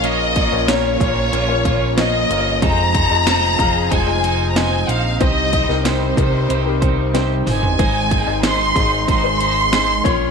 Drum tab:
HH |x-x-x-x-x-x-x-x-|x-x-x-x-x-x-x-x-|x-x-x-x-x-x-x-o-|x-x-x-x-x-x-x-x-|
SD |----o-------o---|----o-------o---|---oo-------o---|----o-------o---|
T2 |----------------|----------------|--------------o-|----------------|
FT |----------------|----------------|---------------o|----------------|
BD |--o---o---o-----|o-o---o-o-------|o-o---o---o-----|o-o---o-o-----o-|